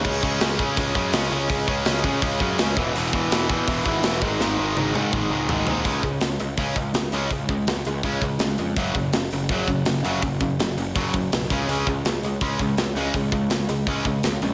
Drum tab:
CC |x-------|--------|--------|--------|
HH |--o-o-o-|o-o-o-o-|o-o-o-o-|--------|
SD |--o---o-|--o---o-|--o---o-|o-------|
T1 |--------|--------|--------|--oo----|
T2 |--------|--------|--------|----o---|
FT |--------|--------|--------|------oo|
BD |oo-ooo--|oo-ooo-o|-o-ooo-o|----o---|

CC |--------|--------|--------|--------|
HH |oooooooo|oooooooo|oooooooo|oooooooo|
SD |--o---o-|--o---o-|--o---o-|--o---o-|
T1 |--------|--------|--------|--------|
T2 |--------|--------|--------|--------|
FT |--------|--------|--------|--------|
BD |oo--oo--|oo--oo--|oo--oo--|oo--oo-o|

CC |--------|--------|
HH |oooooooo|oooooooo|
SD |--o---o-|--o---o-|
T1 |--------|--------|
T2 |--------|--------|
FT |--------|--------|
BD |-o--oo--|oo--oo--|